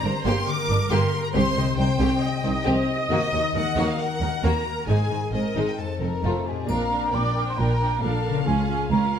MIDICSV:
0, 0, Header, 1, 9, 480
1, 0, Start_track
1, 0, Tempo, 441176
1, 1457, Time_signature, 4, 2, 24, 8
1, 4822, Tempo, 447427
1, 9929, End_track
2, 0, Start_track
2, 0, Title_t, "Flute section"
2, 0, Program_c, 0, 73
2, 6520, Note_on_c, 0, 82, 41
2, 6967, Note_off_c, 0, 82, 0
2, 6998, Note_on_c, 0, 80, 43
2, 7239, Note_off_c, 0, 80, 0
2, 7244, Note_on_c, 0, 82, 68
2, 7712, Note_off_c, 0, 82, 0
2, 7733, Note_on_c, 0, 86, 58
2, 8084, Note_off_c, 0, 86, 0
2, 8096, Note_on_c, 0, 84, 48
2, 8203, Note_off_c, 0, 84, 0
2, 8205, Note_on_c, 0, 82, 57
2, 8677, Note_off_c, 0, 82, 0
2, 8677, Note_on_c, 0, 81, 66
2, 9141, Note_off_c, 0, 81, 0
2, 9145, Note_on_c, 0, 80, 71
2, 9613, Note_off_c, 0, 80, 0
2, 9617, Note_on_c, 0, 82, 51
2, 9929, Note_off_c, 0, 82, 0
2, 9929, End_track
3, 0, Start_track
3, 0, Title_t, "Violin section"
3, 0, Program_c, 1, 48
3, 0, Note_on_c, 1, 82, 81
3, 263, Note_off_c, 1, 82, 0
3, 275, Note_on_c, 1, 84, 72
3, 504, Note_off_c, 1, 84, 0
3, 520, Note_on_c, 1, 86, 82
3, 987, Note_on_c, 1, 84, 71
3, 988, Note_off_c, 1, 86, 0
3, 1341, Note_on_c, 1, 82, 65
3, 1342, Note_off_c, 1, 84, 0
3, 1389, Note_off_c, 1, 82, 0
3, 1442, Note_on_c, 1, 84, 83
3, 1918, Note_off_c, 1, 84, 0
3, 1938, Note_on_c, 1, 79, 75
3, 2877, Note_off_c, 1, 79, 0
3, 3389, Note_on_c, 1, 75, 72
3, 3830, Note_off_c, 1, 75, 0
3, 3879, Note_on_c, 1, 78, 69
3, 4224, Note_on_c, 1, 77, 58
3, 4230, Note_off_c, 1, 78, 0
3, 4342, Note_off_c, 1, 77, 0
3, 4352, Note_on_c, 1, 78, 69
3, 4828, Note_on_c, 1, 82, 62
3, 4829, Note_off_c, 1, 78, 0
3, 5295, Note_on_c, 1, 80, 57
3, 5303, Note_off_c, 1, 82, 0
3, 5768, Note_off_c, 1, 80, 0
3, 5789, Note_on_c, 1, 75, 50
3, 6142, Note_off_c, 1, 75, 0
3, 6163, Note_on_c, 1, 79, 44
3, 6276, Note_off_c, 1, 79, 0
3, 6279, Note_on_c, 1, 81, 42
3, 6505, Note_on_c, 1, 70, 36
3, 6516, Note_off_c, 1, 81, 0
3, 6960, Note_off_c, 1, 70, 0
3, 7003, Note_on_c, 1, 68, 38
3, 7237, Note_off_c, 1, 68, 0
3, 7239, Note_on_c, 1, 70, 51
3, 7710, Note_on_c, 1, 74, 55
3, 7719, Note_off_c, 1, 70, 0
3, 8073, Note_off_c, 1, 74, 0
3, 8086, Note_on_c, 1, 72, 44
3, 8197, Note_on_c, 1, 70, 59
3, 8198, Note_off_c, 1, 72, 0
3, 8672, Note_off_c, 1, 70, 0
3, 8678, Note_on_c, 1, 69, 50
3, 9141, Note_off_c, 1, 69, 0
3, 9148, Note_on_c, 1, 68, 61
3, 9614, Note_off_c, 1, 68, 0
3, 9631, Note_on_c, 1, 70, 56
3, 9929, Note_off_c, 1, 70, 0
3, 9929, End_track
4, 0, Start_track
4, 0, Title_t, "Viola section"
4, 0, Program_c, 2, 48
4, 19, Note_on_c, 2, 72, 58
4, 501, Note_off_c, 2, 72, 0
4, 505, Note_on_c, 2, 70, 73
4, 1439, Note_off_c, 2, 70, 0
4, 1457, Note_on_c, 2, 72, 64
4, 2413, Note_on_c, 2, 75, 79
4, 2414, Note_off_c, 2, 72, 0
4, 4334, Note_on_c, 2, 70, 54
4, 4340, Note_off_c, 2, 75, 0
4, 5278, Note_off_c, 2, 70, 0
4, 5291, Note_on_c, 2, 68, 45
4, 5774, Note_on_c, 2, 70, 43
4, 5776, Note_off_c, 2, 68, 0
4, 6254, Note_off_c, 2, 70, 0
4, 6254, Note_on_c, 2, 69, 39
4, 6689, Note_off_c, 2, 69, 0
4, 6756, Note_on_c, 2, 69, 36
4, 6981, Note_off_c, 2, 69, 0
4, 6991, Note_on_c, 2, 67, 34
4, 7224, Note_on_c, 2, 62, 42
4, 7226, Note_on_c, 2, 70, 40
4, 7236, Note_off_c, 2, 67, 0
4, 7455, Note_off_c, 2, 62, 0
4, 7458, Note_off_c, 2, 70, 0
4, 7468, Note_on_c, 2, 62, 45
4, 7471, Note_on_c, 2, 70, 38
4, 7700, Note_off_c, 2, 62, 0
4, 7701, Note_off_c, 2, 70, 0
4, 7713, Note_on_c, 2, 62, 42
4, 7714, Note_on_c, 2, 70, 41
4, 7937, Note_off_c, 2, 70, 0
4, 7939, Note_off_c, 2, 62, 0
4, 7949, Note_on_c, 2, 70, 41
4, 7952, Note_on_c, 2, 62, 46
4, 8178, Note_off_c, 2, 62, 0
4, 8181, Note_off_c, 2, 70, 0
4, 8191, Note_on_c, 2, 62, 49
4, 8194, Note_on_c, 2, 70, 43
4, 8418, Note_off_c, 2, 70, 0
4, 8422, Note_off_c, 2, 62, 0
4, 8431, Note_on_c, 2, 70, 36
4, 8435, Note_on_c, 2, 62, 39
4, 8657, Note_off_c, 2, 62, 0
4, 8658, Note_off_c, 2, 70, 0
4, 8670, Note_on_c, 2, 62, 38
4, 8671, Note_on_c, 2, 70, 37
4, 8885, Note_off_c, 2, 70, 0
4, 8887, Note_off_c, 2, 62, 0
4, 8898, Note_on_c, 2, 70, 46
4, 8899, Note_on_c, 2, 62, 43
4, 9137, Note_off_c, 2, 70, 0
4, 9138, Note_off_c, 2, 62, 0
4, 9140, Note_on_c, 2, 61, 48
4, 9142, Note_on_c, 2, 65, 43
4, 9372, Note_off_c, 2, 61, 0
4, 9373, Note_off_c, 2, 65, 0
4, 9385, Note_on_c, 2, 61, 44
4, 9386, Note_on_c, 2, 65, 39
4, 9601, Note_off_c, 2, 61, 0
4, 9603, Note_off_c, 2, 65, 0
4, 9614, Note_on_c, 2, 61, 43
4, 9616, Note_on_c, 2, 65, 47
4, 9843, Note_off_c, 2, 61, 0
4, 9846, Note_off_c, 2, 65, 0
4, 9856, Note_on_c, 2, 61, 44
4, 9859, Note_on_c, 2, 65, 43
4, 9929, Note_off_c, 2, 61, 0
4, 9929, Note_off_c, 2, 65, 0
4, 9929, End_track
5, 0, Start_track
5, 0, Title_t, "Violin section"
5, 0, Program_c, 3, 48
5, 45, Note_on_c, 3, 70, 49
5, 46, Note_on_c, 3, 62, 41
5, 132, Note_off_c, 3, 70, 0
5, 133, Note_off_c, 3, 62, 0
5, 280, Note_on_c, 3, 58, 61
5, 284, Note_on_c, 3, 67, 69
5, 495, Note_off_c, 3, 58, 0
5, 497, Note_off_c, 3, 67, 0
5, 760, Note_on_c, 3, 62, 46
5, 763, Note_on_c, 3, 70, 45
5, 847, Note_off_c, 3, 62, 0
5, 850, Note_off_c, 3, 70, 0
5, 991, Note_on_c, 3, 67, 69
5, 994, Note_on_c, 3, 58, 57
5, 1208, Note_off_c, 3, 67, 0
5, 1209, Note_off_c, 3, 58, 0
5, 1459, Note_on_c, 3, 60, 60
5, 1461, Note_on_c, 3, 67, 66
5, 1680, Note_off_c, 3, 60, 0
5, 1681, Note_off_c, 3, 67, 0
5, 1723, Note_on_c, 3, 67, 36
5, 1723, Note_on_c, 3, 75, 38
5, 1810, Note_off_c, 3, 67, 0
5, 1810, Note_off_c, 3, 75, 0
5, 1939, Note_on_c, 3, 63, 47
5, 1943, Note_on_c, 3, 72, 50
5, 2026, Note_off_c, 3, 63, 0
5, 2030, Note_off_c, 3, 72, 0
5, 2178, Note_on_c, 3, 67, 58
5, 2180, Note_on_c, 3, 60, 59
5, 2399, Note_off_c, 3, 67, 0
5, 2400, Note_off_c, 3, 60, 0
5, 2656, Note_on_c, 3, 63, 42
5, 2661, Note_on_c, 3, 72, 48
5, 2743, Note_off_c, 3, 63, 0
5, 2748, Note_off_c, 3, 72, 0
5, 2888, Note_on_c, 3, 67, 61
5, 2890, Note_on_c, 3, 60, 63
5, 3116, Note_off_c, 3, 67, 0
5, 3117, Note_off_c, 3, 60, 0
5, 3385, Note_on_c, 3, 66, 57
5, 3387, Note_on_c, 3, 58, 61
5, 3605, Note_off_c, 3, 66, 0
5, 3606, Note_off_c, 3, 58, 0
5, 3629, Note_on_c, 3, 66, 40
5, 3629, Note_on_c, 3, 75, 36
5, 3716, Note_off_c, 3, 66, 0
5, 3716, Note_off_c, 3, 75, 0
5, 3868, Note_on_c, 3, 70, 45
5, 3872, Note_on_c, 3, 63, 46
5, 3955, Note_off_c, 3, 70, 0
5, 3959, Note_off_c, 3, 63, 0
5, 4102, Note_on_c, 3, 66, 68
5, 4106, Note_on_c, 3, 58, 59
5, 4325, Note_off_c, 3, 66, 0
5, 4327, Note_off_c, 3, 58, 0
5, 4590, Note_on_c, 3, 70, 38
5, 4594, Note_on_c, 3, 63, 40
5, 4677, Note_off_c, 3, 70, 0
5, 4681, Note_off_c, 3, 63, 0
5, 4831, Note_on_c, 3, 58, 62
5, 4833, Note_on_c, 3, 66, 49
5, 5049, Note_off_c, 3, 58, 0
5, 5050, Note_off_c, 3, 66, 0
5, 5310, Note_on_c, 3, 63, 47
5, 5314, Note_on_c, 3, 56, 42
5, 5528, Note_off_c, 3, 63, 0
5, 5530, Note_off_c, 3, 56, 0
5, 5550, Note_on_c, 3, 72, 29
5, 5552, Note_on_c, 3, 63, 29
5, 5636, Note_off_c, 3, 72, 0
5, 5638, Note_off_c, 3, 63, 0
5, 5796, Note_on_c, 3, 68, 30
5, 5802, Note_on_c, 3, 60, 33
5, 5882, Note_off_c, 3, 68, 0
5, 5888, Note_off_c, 3, 60, 0
5, 6039, Note_on_c, 3, 63, 45
5, 6040, Note_on_c, 3, 56, 44
5, 6258, Note_off_c, 3, 63, 0
5, 6259, Note_off_c, 3, 56, 0
5, 6521, Note_on_c, 3, 60, 28
5, 6523, Note_on_c, 3, 69, 29
5, 6607, Note_off_c, 3, 60, 0
5, 6609, Note_off_c, 3, 69, 0
5, 6770, Note_on_c, 3, 57, 41
5, 6772, Note_on_c, 3, 65, 45
5, 6988, Note_off_c, 3, 57, 0
5, 6989, Note_off_c, 3, 65, 0
5, 7248, Note_on_c, 3, 77, 50
5, 7690, Note_off_c, 3, 77, 0
5, 7719, Note_on_c, 3, 79, 49
5, 8653, Note_off_c, 3, 79, 0
5, 8671, Note_on_c, 3, 77, 56
5, 9599, Note_off_c, 3, 77, 0
5, 9612, Note_on_c, 3, 77, 56
5, 9929, Note_off_c, 3, 77, 0
5, 9929, End_track
6, 0, Start_track
6, 0, Title_t, "Harp"
6, 0, Program_c, 4, 46
6, 0, Note_on_c, 4, 43, 52
6, 0, Note_on_c, 4, 62, 43
6, 32, Note_on_c, 4, 70, 44
6, 266, Note_on_c, 4, 67, 42
6, 506, Note_on_c, 4, 50, 46
6, 736, Note_off_c, 4, 62, 0
6, 749, Note_on_c, 4, 62, 45
6, 972, Note_off_c, 4, 70, 0
6, 985, Note_on_c, 4, 70, 48
6, 1200, Note_off_c, 4, 67, 0
6, 1213, Note_on_c, 4, 67, 47
6, 1457, Note_on_c, 4, 48, 56
6, 1478, Note_off_c, 4, 50, 0
6, 1479, Note_off_c, 4, 70, 0
6, 1480, Note_off_c, 4, 62, 0
6, 1483, Note_off_c, 4, 43, 0
6, 1688, Note_on_c, 4, 63, 46
6, 1931, Note_on_c, 4, 72, 42
6, 2156, Note_off_c, 4, 67, 0
6, 2169, Note_on_c, 4, 67, 44
6, 2402, Note_on_c, 4, 55, 46
6, 2633, Note_off_c, 4, 63, 0
6, 2646, Note_on_c, 4, 63, 43
6, 2881, Note_off_c, 4, 72, 0
6, 2894, Note_on_c, 4, 72, 46
6, 3121, Note_off_c, 4, 67, 0
6, 3135, Note_on_c, 4, 67, 43
6, 3373, Note_on_c, 4, 51, 50
6, 3390, Note_off_c, 4, 55, 0
6, 3395, Note_off_c, 4, 67, 0
6, 3395, Note_off_c, 4, 72, 0
6, 3396, Note_off_c, 4, 48, 0
6, 3611, Note_off_c, 4, 63, 0
6, 3624, Note_on_c, 4, 63, 43
6, 3855, Note_on_c, 4, 70, 41
6, 4102, Note_on_c, 4, 66, 38
6, 4351, Note_on_c, 4, 58, 39
6, 4568, Note_off_c, 4, 63, 0
6, 4581, Note_on_c, 4, 63, 40
6, 4811, Note_off_c, 4, 70, 0
6, 4824, Note_on_c, 4, 70, 38
6, 5049, Note_off_c, 4, 66, 0
6, 5062, Note_on_c, 4, 66, 37
6, 5304, Note_on_c, 4, 44, 45
6, 5317, Note_off_c, 4, 51, 0
6, 5319, Note_off_c, 4, 66, 0
6, 5319, Note_off_c, 4, 70, 0
6, 5325, Note_off_c, 4, 58, 0
6, 5523, Note_off_c, 4, 63, 0
6, 5536, Note_on_c, 4, 63, 28
6, 5780, Note_on_c, 4, 72, 29
6, 6021, Note_on_c, 4, 68, 30
6, 6266, Note_on_c, 4, 41, 38
6, 6285, Note_off_c, 4, 68, 0
6, 6288, Note_off_c, 4, 44, 0
6, 6505, Note_off_c, 4, 63, 0
6, 6518, Note_on_c, 4, 63, 26
6, 6737, Note_off_c, 4, 72, 0
6, 6750, Note_on_c, 4, 72, 29
6, 6989, Note_off_c, 4, 63, 0
6, 7001, Note_on_c, 4, 63, 30
6, 7042, Note_on_c, 4, 46, 37
6, 7091, Note_on_c, 4, 65, 36
6, 7140, Note_on_c, 4, 58, 32
6, 7188, Note_on_c, 4, 74, 36
6, 7256, Note_off_c, 4, 72, 0
6, 7257, Note_off_c, 4, 41, 0
6, 7260, Note_off_c, 4, 63, 0
6, 8954, Note_on_c, 4, 49, 43
6, 8988, Note_off_c, 4, 65, 0
6, 9000, Note_on_c, 4, 65, 37
6, 9049, Note_on_c, 4, 73, 36
6, 9069, Note_off_c, 4, 46, 0
6, 9118, Note_off_c, 4, 58, 0
6, 9142, Note_off_c, 4, 74, 0
6, 9929, Note_off_c, 4, 49, 0
6, 9929, Note_off_c, 4, 65, 0
6, 9929, Note_off_c, 4, 73, 0
6, 9929, End_track
7, 0, Start_track
7, 0, Title_t, "Cello section"
7, 0, Program_c, 5, 48
7, 39, Note_on_c, 5, 43, 51
7, 126, Note_off_c, 5, 43, 0
7, 279, Note_on_c, 5, 43, 62
7, 366, Note_off_c, 5, 43, 0
7, 758, Note_on_c, 5, 43, 46
7, 845, Note_off_c, 5, 43, 0
7, 995, Note_on_c, 5, 43, 69
7, 1082, Note_off_c, 5, 43, 0
7, 1466, Note_on_c, 5, 36, 71
7, 1553, Note_off_c, 5, 36, 0
7, 1699, Note_on_c, 5, 36, 46
7, 1786, Note_off_c, 5, 36, 0
7, 1927, Note_on_c, 5, 36, 52
7, 2014, Note_off_c, 5, 36, 0
7, 2171, Note_on_c, 5, 36, 64
7, 2258, Note_off_c, 5, 36, 0
7, 2655, Note_on_c, 5, 36, 46
7, 2742, Note_off_c, 5, 36, 0
7, 2896, Note_on_c, 5, 36, 62
7, 2984, Note_off_c, 5, 36, 0
7, 3368, Note_on_c, 5, 39, 65
7, 3455, Note_off_c, 5, 39, 0
7, 3617, Note_on_c, 5, 39, 41
7, 3705, Note_off_c, 5, 39, 0
7, 3862, Note_on_c, 5, 39, 45
7, 3949, Note_off_c, 5, 39, 0
7, 4106, Note_on_c, 5, 39, 58
7, 4193, Note_off_c, 5, 39, 0
7, 4574, Note_on_c, 5, 39, 37
7, 4661, Note_off_c, 5, 39, 0
7, 4827, Note_on_c, 5, 39, 55
7, 4913, Note_off_c, 5, 39, 0
7, 5303, Note_on_c, 5, 44, 52
7, 5389, Note_off_c, 5, 44, 0
7, 5545, Note_on_c, 5, 44, 34
7, 5631, Note_off_c, 5, 44, 0
7, 5784, Note_on_c, 5, 44, 36
7, 5870, Note_off_c, 5, 44, 0
7, 6027, Note_on_c, 5, 44, 37
7, 6112, Note_off_c, 5, 44, 0
7, 6517, Note_on_c, 5, 41, 27
7, 6603, Note_off_c, 5, 41, 0
7, 6751, Note_on_c, 5, 41, 45
7, 6836, Note_off_c, 5, 41, 0
7, 7238, Note_on_c, 5, 46, 62
7, 7640, Note_off_c, 5, 46, 0
7, 7722, Note_on_c, 5, 46, 56
7, 8120, Note_off_c, 5, 46, 0
7, 8199, Note_on_c, 5, 46, 50
7, 8596, Note_off_c, 5, 46, 0
7, 8671, Note_on_c, 5, 46, 52
7, 9070, Note_off_c, 5, 46, 0
7, 9151, Note_on_c, 5, 37, 64
7, 9548, Note_off_c, 5, 37, 0
7, 9623, Note_on_c, 5, 37, 62
7, 9929, Note_off_c, 5, 37, 0
7, 9929, End_track
8, 0, Start_track
8, 0, Title_t, "Double bass section"
8, 0, Program_c, 6, 48
8, 33, Note_on_c, 6, 31, 41
8, 120, Note_off_c, 6, 31, 0
8, 272, Note_on_c, 6, 31, 64
8, 359, Note_off_c, 6, 31, 0
8, 748, Note_on_c, 6, 31, 42
8, 835, Note_off_c, 6, 31, 0
8, 983, Note_on_c, 6, 31, 64
8, 1070, Note_off_c, 6, 31, 0
8, 1470, Note_on_c, 6, 36, 68
8, 1557, Note_off_c, 6, 36, 0
8, 1706, Note_on_c, 6, 36, 45
8, 1793, Note_off_c, 6, 36, 0
8, 1951, Note_on_c, 6, 36, 46
8, 2038, Note_off_c, 6, 36, 0
8, 2180, Note_on_c, 6, 36, 62
8, 2267, Note_off_c, 6, 36, 0
8, 2664, Note_on_c, 6, 36, 41
8, 2751, Note_off_c, 6, 36, 0
8, 2906, Note_on_c, 6, 36, 67
8, 2993, Note_off_c, 6, 36, 0
8, 3385, Note_on_c, 6, 39, 57
8, 3472, Note_off_c, 6, 39, 0
8, 3621, Note_on_c, 6, 39, 44
8, 3708, Note_off_c, 6, 39, 0
8, 3866, Note_on_c, 6, 39, 40
8, 3953, Note_off_c, 6, 39, 0
8, 4099, Note_on_c, 6, 39, 57
8, 4187, Note_off_c, 6, 39, 0
8, 4577, Note_on_c, 6, 39, 37
8, 4664, Note_off_c, 6, 39, 0
8, 4814, Note_on_c, 6, 39, 53
8, 4900, Note_off_c, 6, 39, 0
8, 5297, Note_on_c, 6, 32, 45
8, 5383, Note_off_c, 6, 32, 0
8, 5535, Note_on_c, 6, 32, 30
8, 5621, Note_off_c, 6, 32, 0
8, 5776, Note_on_c, 6, 32, 33
8, 5861, Note_off_c, 6, 32, 0
8, 6028, Note_on_c, 6, 32, 48
8, 6114, Note_off_c, 6, 32, 0
8, 6518, Note_on_c, 6, 29, 28
8, 6604, Note_off_c, 6, 29, 0
8, 6762, Note_on_c, 6, 29, 39
8, 6848, Note_off_c, 6, 29, 0
8, 7245, Note_on_c, 6, 34, 49
8, 7644, Note_off_c, 6, 34, 0
8, 7727, Note_on_c, 6, 34, 51
8, 8122, Note_off_c, 6, 34, 0
8, 8204, Note_on_c, 6, 34, 47
8, 8599, Note_off_c, 6, 34, 0
8, 8676, Note_on_c, 6, 34, 59
8, 9072, Note_off_c, 6, 34, 0
8, 9153, Note_on_c, 6, 37, 53
8, 9549, Note_off_c, 6, 37, 0
8, 9625, Note_on_c, 6, 37, 52
8, 9929, Note_off_c, 6, 37, 0
8, 9929, End_track
9, 0, Start_track
9, 0, Title_t, "Drums"
9, 7240, Note_on_c, 9, 81, 29
9, 7348, Note_off_c, 9, 81, 0
9, 9929, End_track
0, 0, End_of_file